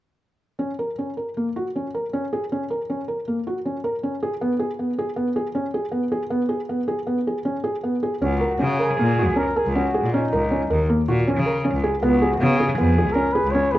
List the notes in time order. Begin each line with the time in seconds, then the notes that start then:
0.59 C#4
0.79 A#4
0.98 C#4
1.17 A#4
1.37 A#3
1.56 F#4
1.76 C#4
1.94 A#4
2.13 C#4
2.33 G#4
2.52 C#4
2.70 A#4
2.90 C#4
3.08 A#4
3.28 A#3
3.47 F#4
3.65 C#4
3.84 A#4
4.03 C#4
4.23 G#4
4.41 B3
4.59 G#4
4.79 B3
4.99 G#4
5.16 B3
5.36 G#4
5.55 C#4
5.74 G#4
5.92 B3
6.12 G#4
6.30 B3
6.49 G#4
6.69 B3
6.88 G#4
7.07 B3
7.27 G#4
7.45 C#4
7.64 G#4
7.83 B3
8.03 G#4
8.22 C#2 C#4 F#4
8.40 A#4
8.59 C#3 C#4
8.79 G#4 A#4
8.99 A#2 A#3
9.19 F#4
9.28 C#2
9.36 C#4 A#4
9.56 G#4 A#4
9.66 C#2
9.75 C#4 F#4
9.94 G#4
10.04 A#2
10.13 C#4 D#4
10.32 C#2 A#4
10.51 C#4
10.70 D#2 A#4
10.89 A#3
11.08 A#2 F#4
11.28 C#4
11.36 C#3
11.46 A#4
11.64 C#4
11.74 C#2
11.84 G#4
12.01 C#2 B3 F#4
12.22 G#4
12.40 C#3 B3
12.57 G#4
12.78 F2 B3
12.98 G#4
13.06 C#2
13.12 C#4 A#4
13.33 G#4 B4
13.44 C#2
13.51 C#4 C#5
13.71 G#4 B4